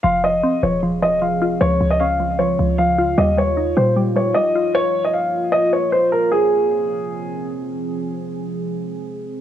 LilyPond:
<<
  \new Staff \with { instrumentName = "Grand piano" } { \time 4/4 \key f \minor \tempo 4 = 153 f''8 ees''4 des''8 r8 ees''8 f''4 | des''8. ees''16 f''4 des''4 f''4 | ees''8 des''4 c''8 r8 des''8 ees''4 | des''8. ees''16 f''4 ees''8 des''8 c''8 bes'8 |
aes'2. r4 | r1 | }
  \new Staff \with { instrumentName = "Ambient pad" } { \time 4/4 \key f \minor << { aes'1 | f'1~ | f'1 | des''1 |
<f c' aes'>1~ | <f c' aes'>1 | } \\ { <f c'>1 | <des aes>1 | <g ees'>1 | bes1 |
r1 | r1 | } >> }
  \new Staff \with { instrumentName = "Synth pluck" } { \clef bass \time 4/4 \key f \minor f8 f8 c'8 f8 f8 f8 f8 f'8 | f8 f8 des'8 f8 f8 f8 f8 f'8 | g8 g8 ees'8 g8 g8 g8 g8 f'8 | r1 |
r1 | r1 | }
  \new Staff \with { instrumentName = "808-style bass" } { \clef bass \time 4/4 \key f \minor f,,4 r8 ees,,2~ ees,,8 | des,8 des,2 des,4. | ees,4. bes,4. r4 | r1 |
r1 | r1 | }
>>